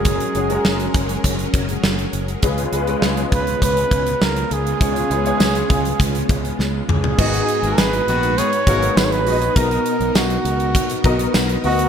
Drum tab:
CC |----------------|----------------|----------------|x---------------|
HH |xxxx-xxxxxxx-xxx|xxxx-xxxxxxx-xxx|xxxx-xxxxxxx----|-xxx-xxxxxxx-xox|
TB |----------------|----------------|----x-----------|----x-------x---|
SD |----o-------o---|----o-------o---|----o-------o---|----o-------o---|
T2 |----------------|----------------|--------------o-|----------------|
FT |----------------|----------------|---------------o|----------------|
BD |o-----o-o-o-----|o-----o-o-o-----|o-----o-o-o-----|o---------o-----|

CC |----------------|
HH |xxxx-xxxxxxx-xox|
TB |----x-------x---|
SD |----o-------o---|
T2 |----------------|
FT |----------------|
BD |o-------o-o-----|